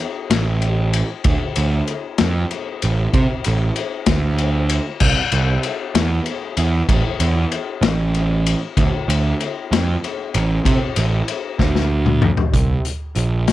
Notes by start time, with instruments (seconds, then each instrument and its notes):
0.30 picked electric bass A1, snare, ride
0.62 ride
0.93 ride
1.24 picked electric bass D2, kick, ride
1.56 picked electric bass D2, ride
1.87 ride
2.18 picked electric bass F2, snare, ride
2.51 ride
2.82 picked electric bass A1, ride
3.13 picked electric bass C3, kick, ride
3.44 picked electric bass A1, ride
3.76 ride
4.06 picked electric bass D2, kick, snare, ride
4.38 ride
4.69 ride
5.00 picked electric bass C2, kick, crash
5.32 picked electric bass C2, ride
5.63 ride
5.95 picked electric bass E2, snare, ride
6.26 ride
6.57 picked electric bass E2, ride
6.88 picked electric bass A1, kick, ride
7.20 picked electric bass E2, ride
7.52 ride
7.82 picked electric bass A1, snare, ride
8.14 ride
8.46 ride
8.77 picked electric bass D2, kick, ride
9.08 picked electric bass D2, ride
9.40 ride
9.72 picked electric bass F2, snare, ride
10.04 ride
10.34 picked electric bass A1, ride
10.65 picked electric bass C3, kick, ride
10.96 picked electric bass A1, ride
11.28 ride
11.59 picked electric bass D2, kick, snare
11.75 snare
12.06 mid tom
12.22 mid tom
12.37 floor tom
12.53 picked electric bass C2, kick, closed hi-hat
12.85 closed hi-hat
13.15 picked electric bass A#1, closed hi-hat
13.48 snare, closed hi-hat